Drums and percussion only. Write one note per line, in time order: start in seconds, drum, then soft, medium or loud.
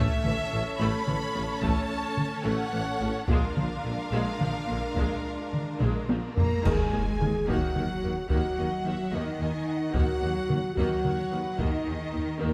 0.24 taiko mid medium
1.08 taiko mid medium
1.63 taiko medium
2.17 taiko mid medium
3.29 taiko loud
3.57 taiko mid medium
4.41 taiko mid medium
4.96 taiko medium
5.53 taiko mid medium
5.81 taiko low-mid medium
6.09 taiko high loud
6.37 taiko low loud
6.65 concert bass drum medium
6.65 taiko medium
6.65 crash medium
7.21 taiko mid medium
7.49 taiko medium
7.76 taiko mid medium
8.30 taiko medium
9.94 taiko loud
10.50 taiko mid medium
10.77 taiko medium
11.05 taiko mid medium
11.59 taiko medium